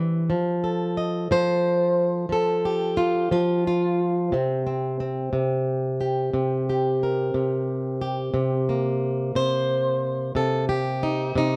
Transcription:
Already playing: E3 C4 E4
0.30 F3
0.64 A4
0.97 D#5
1.31 F3 C5
2.29 F3 A4
2.65 G4
2.97 F4
3.31 F3 F4
3.67 F4
4.32 C3 C4
4.67 C4
5.00 C4
5.33 C3
6.01 G4
6.34 C3
6.70 G4
7.03 A#4
7.34 C3
8.02 G4
8.34 C3
8.69 A#3
9.35 C3 C5
10.35 C3 A4
10.69 G4
11.03 D#4
11.35 C3 D#4

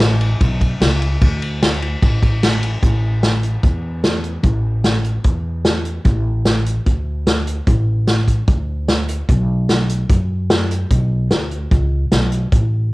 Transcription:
Already playing: A1
0.00 snare, ride
0.21 ride
0.41 B1, kick, ride
0.61 kick, ride
0.81 C#2, snare, ride
1.02 ride
1.22 D2, kick, ride
1.42 ride
1.63 snare, ride
1.82 ride
2.02 A1, kick, ride
2.23 kick, ride
2.43 snare, ride
2.63 ride
2.83 A1, kick, closed hi-hat
3.23 snare, closed hi-hat
3.43 closed hi-hat
3.63 E2, kick, closed hi-hat
4.04 snare, closed hi-hat
4.24 closed hi-hat
4.43 A1, kick, closed hi-hat
4.84 snare, closed hi-hat
5.04 closed hi-hat
5.24 E2, kick, closed hi-hat
5.65 snare, closed hi-hat
5.85 closed hi-hat
6.05 A1, kick, closed hi-hat
6.45 snare, closed hi-hat
6.66 closed hi-hat
6.86 D2, kick, closed hi-hat
7.27 snare, closed hi-hat
7.47 closed hi-hat
7.67 A1, kick, closed hi-hat
8.08 snare, closed hi-hat
8.28 kick, closed hi-hat
8.48 D2, kick, closed hi-hat
8.88 snare, closed hi-hat
9.09 closed hi-hat
9.29 B1, kick, closed hi-hat
9.69 snare, closed hi-hat
9.90 closed hi-hat
10.10 F#2, kick, closed hi-hat
10.50 snare, closed hi-hat
10.71 closed hi-hat
10.90 B1, kick, closed hi-hat
11.31 D2, snare, closed hi-hat
11.51 closed hi-hat
11.71 C#2, kick, closed hi-hat
12.12 B1, snare, closed hi-hat
12.32 closed hi-hat
12.52 A1, kick, closed hi-hat

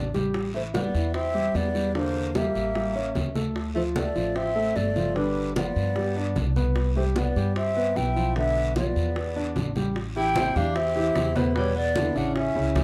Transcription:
Already playing: A1 B3 D5
0.14 G3 G4, high conga, short guiro
0.34 high bongo, high conga, long guiro
0.54 E3 A3 E4 C5, high bongo, high conga
0.74 G3 B3 G4 D5, high bongo, high conga, short guiro
0.94 E2 E3 E4, high bongo, high conga, short guiro
1.14 C4 E5, high bongo, high conga, long guiro
1.34 G3 G4, high bongo, high conga
1.54 E2 B3 D5, high bongo, low bongo, high conga, short guiro
1.75 G3 G4, short guiro
1.95 D3 A#3 D4 C5, high bongo, high conga, long guiro
2.15 high bongo, high conga
2.35 G3 A#3 G4 E5, high bongo, high conga, short guiro
2.55 A1, high bongo, high conga, short guiro
2.75 G3 G4, high bongo, high conga, long guiro
2.95 C#4 C#5, high bongo, high conga
3.15 D2, high bongo, low bongo, high conga, short guiro
3.35 A3 A4, high conga, short guiro
3.56 high bongo, high conga, long guiro
3.75 F3 A3 F4 C5, high bongo, high conga
3.95 A3 A4 D5, high bongo, high conga, short guiro
4.15 A1 F3 F4, high bongo, high conga, short guiro
4.36 C4 E5, high bongo, high conga, long guiro
4.56 A3 A4, high bongo, high conga
4.75 G1 A3 D5, high bongo, low bongo, high conga, short guiro
4.96 F3 F4, high conga, short guiro
5.15 D3 G3 D4 B4, high bongo, high conga, long guiro
5.36 high bongo, high conga
5.56 F3 B3 F4 D5, high bongo, high conga, short guiro
5.76 G2, high bongo, high conga, short guiro
5.96 G3 G4, high bongo, high conga, long guiro
6.16 D4 D5, high bongo, high conga
6.36 C2, high bongo, low bongo, high conga, short guiro
6.56 B3 B4, high conga, short guiro
6.76 high bongo, high conga, long guiro
6.96 G3 A3 G4 C5, high bongo, high conga
7.16 B3 B4 D5, high bongo, high conga, short guiro
7.36 G2 G3 G4, high bongo, high conga, short guiro
7.55 C4 E5, high bongo, high conga, long guiro
7.76 B3 B4, high bongo, high conga
7.96 B1 E4 G5, high bongo, low bongo, high conga, short guiro
8.16 F3 F4, short guiro
8.36 D3 B3 D4 E5, high bongo, high conga, long guiro
8.56 high bongo, high conga
8.76 F3 B3 F4 D5, high bongo, high conga, short guiro
8.96 E2, high bongo, high conga, short guiro
9.16 B3 B4, high bongo, high conga, long guiro
9.36 D4 D5, high bongo, high conga
9.56 A1, high bongo, low bongo, high conga, short guiro
9.76 G3 G4, high conga, short guiro
9.96 high bongo, high conga, long guiro
10.16 E3 E4 G4 G5, high bongo, high conga
10.36 C3 C4 C5, high bongo, high conga, short guiro
10.55 E2 E3 D4 E4 G4 F5, high conga, low conga, short guiro
10.75 C4 E5, high bongo, high conga, long guiro
10.95 E3 E4 G4, high bongo, high conga
11.15 E2, high bongo, low bongo, high conga, short guiro
11.35 B2 A3 B3 B4 C5, high bongo, high conga, short guiro
11.55 B2 G3 B3 B4 C#5, high bongo, high conga, long guiro
11.76 B3 D5, high bongo, high conga
11.96 D3 D4 E4, high bongo, high conga, short guiro
12.15 A1 C#3 C#4 D4 E4 F#5, short guiro
12.35 C#4 E5, high bongo, high conga, long guiro
12.55 C#2 C#3 C#4 E4, high bongo, high conga
12.75 D2, high bongo, low bongo, high conga, short guiro

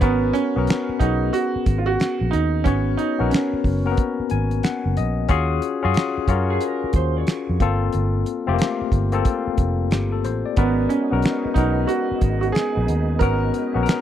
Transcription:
0.01 G#1 B3 C#4 F#4 A#4, kick, closed hi-hat
0.33 C#4, closed hi-hat
0.56 B1 B3 C#4 F#4 A#4
0.67 finger snap, snare, closed hi-hat
0.89 muted fingered electric bass stroke
0.99 B1 B3 C#4 D#4 F#4 G#4, kick, closed hi-hat
1.33 F#4, closed hi-hat
1.56 muted fingered electric bass stroke
1.66 G#1, kick, closed hi-hat
1.78 F4
1.86 F#4
2.00 finger snap, snare, closed hi-hat
2.21 A#1
2.31 D#2 D#4, closed hi-hat
2.64 G#1 B3 C#4 F#4 C#5, kick, closed hi-hat
2.97 D#4, closed hi-hat
3.19 A#1 B3 C#4 F#4 A#4
3.30 C#4, closed hi-hat
3.34 finger snap, snare
3.53 muted fingered electric bass stroke
3.64 F#1, kick, open hi-hat
3.85 A#3 C#4 F#4 A#4
3.91 B3
3.97 kick, closed hi-hat
4.20 muted fingered electric bass stroke
4.30 G#1 G#5, closed hi-hat
4.51 closed hi-hat
4.63 F#5, finger snap, snare, closed hi-hat
4.86 F#1
4.97 A#1 D#5, closed hi-hat
5.28 D#2 C#4 F4 F#4 G#4, kick, closed hi-hat
5.62 closed hi-hat
5.83 F#2 C#4 F4 F#4 G#4
5.94 finger snap, snare, closed hi-hat
6.18 muted fingered electric bass stroke
6.28 F#2 C#4 F4 F#4 A#4, kick, closed hi-hat
6.50 G#4
6.61 A#4, closed hi-hat
6.84 muted fingered electric bass stroke
6.93 D#2 C5, kick, closed hi-hat
7.17 C#5
7.27 finger snap, snare, closed hi-hat
7.49 F2
7.60 G1 A#3 C4 F4 A4, kick, closed hi-hat
7.93 G1, closed hi-hat
8.26 closed hi-hat
8.47 F1 A3 C4 F4 G4
8.53 A#3
8.59 finger snap, snare, closed hi-hat
8.81 muted fingered electric bass stroke
8.92 G1, kick, closed hi-hat
9.12 A#3 C4 F4 A4, closed hi-hat
9.25 kick, closed hi-hat
9.47 muted fingered electric bass stroke
9.58 F1, kick, closed hi-hat
9.91 G1 G4, finger snap, snare, closed hi-hat
10.12 A4
10.25 A1 C5, closed hi-hat
10.46 D5
10.56 G#1 G#3 B3 C#4 D#4 F#4 A#4, kick, closed hi-hat
10.89 C#4, closed hi-hat
11.11 B1 B3 C#4 F#4 A#4
11.22 finger snap, snare, closed hi-hat
11.45 muted fingered electric bass stroke
11.54 B1 B3 C#4 D#4 F#4 A#4, kick, closed hi-hat
11.87 F#4, closed hi-hat
12.11 muted fingered electric bass stroke
12.21 G#1, kick, closed hi-hat
12.41 F#4, closed hi-hat
12.52 G#4, finger snap, snare, closed hi-hat
12.77 A#1
12.88 D#2, closed hi-hat
13.19 G#1 B3 C#4 F#4 A#4, kick, closed hi-hat
13.54 closed hi-hat
13.74 A#1 B3 C#4 F#4 A#4
13.83 A#4, closed hi-hat
13.89 finger snap, snare

